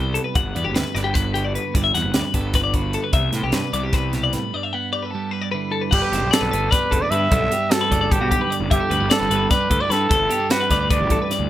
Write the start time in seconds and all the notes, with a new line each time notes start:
Already playing: C2 C3 G3 B3 C5 D5
0.00 E4
0.14 A4, closed hi-hat
0.24 B4
0.35 G1 G2 F#5, kick, closed hi-hat
0.55 E2 B3 D5, closed hi-hat
0.64 F#1 G4
0.74 D2 B4, snare, closed hi-hat
0.95 G1 G3 B3 D5, snare, closed hi-hat
1.04 G4
1.14 B4, kick, closed hi-hat
1.34 D3 F#4 G4, closed hi-hat
1.44 D5
1.55 B4, closed hi-hat
1.75 G1 G2 D5, kick, closed hi-hat
1.84 E5
1.94 E2 B3 F#5, snare, closed hi-hat
2.04 F#1
2.14 D2 B4 D5, snare, closed hi-hat
2.25 B4
2.34 G1 G3 B3 A4, kick, closed hi-hat
2.54 B4, kick, snare, closed hi-hat
2.64 D5
2.74 D3 F#4 B4, kick, closed hi-hat
2.93 A4, closed hi-hat
3.04 B4
3.13 C2 C3 E5, kick, closed hi-hat
3.32 A2 B3 C5, snare, closed hi-hat
3.43 B1 G4
3.52 G2 B4 D5, snare, closed hi-hat
3.73 C2 G3 B3 D5, closed hi-hat
3.84 G4
3.93 C3 B4, kick, snare, closed hi-hat
4.13 B2 G4, snare, closed hi-hat
4.24 D5
4.33 A2 B4, snare, closed hi-hat
4.54 G2 D5
4.63 E5
4.73 B3 F#5
4.93 G4 D5
5.03 A4 B4
5.11 G3 A4
5.15 B3
5.31 B4
5.42 D5
5.52 D3 E4 B4
5.72 A4
5.81 B4
5.91 G1 G2 D4 G4 F#5, kick, crash
6.02 B4
6.12 F#1 B3 C5, snare, closed hi-hat
6.21 B1
6.31 G3 D4 A4 D5, snare, closed hi-hat
6.41 B1 B4
6.51 G1 D4 B4, closed hi-hat
6.71 B3 B4 D5, kick, snare, closed hi-hat
6.91 F#1 D3 D4 A4, kick, closed hi-hat
7.02 B4 D5
7.11 G2 B4 E5, closed hi-hat
7.31 B1 G2 D4 A4, kick, closed hi-hat
7.51 B3 G4, closed hi-hat
7.70 G3 D4 F#4 A4, snare, closed hi-hat
7.81 B4
7.91 F#1 D4 D5, kick, closed hi-hat
8.01 D5
8.11 B3 G4 A4, kick, closed hi-hat
8.21 B1 F#4
8.31 D3 D4 G4, kick, closed hi-hat
8.41 B4
8.50 D5, closed hi-hat
8.60 F#1
8.70 G1 G2 D4 G4 E5, kick, closed hi-hat
8.80 E4 A4
8.90 D2 B3 B4, closed hi-hat
9.00 G1 D4
9.10 G3 D4 A4 D5, snare, closed hi-hat
9.20 G1 E4 B4
9.30 G1 G4 B4, closed hi-hat
9.51 B3 B4 D5, kick, snare, closed hi-hat
9.60 D4
9.70 D2 G2 D4 A4, kick, closed hi-hat
9.80 E4 B4 D5
9.90 G2 A4 B4, snare, closed hi-hat
10.09 G1 G2 E4 A4, kick, closed hi-hat
10.29 B3 G4, closed hi-hat
10.40 D4
10.50 G3 E4 F#4 B4, snare, closed hi-hat
10.60 B4
10.70 D2 G4 D5, kick, snare, closed hi-hat
10.81 D5
10.90 D4 B4 D5, kick, closed hi-hat
11.00 A1 G4
11.09 G2 E4 A4, kick, closed hi-hat
11.22 B4
11.31 D5, snare, closed hi-hat
11.40 D2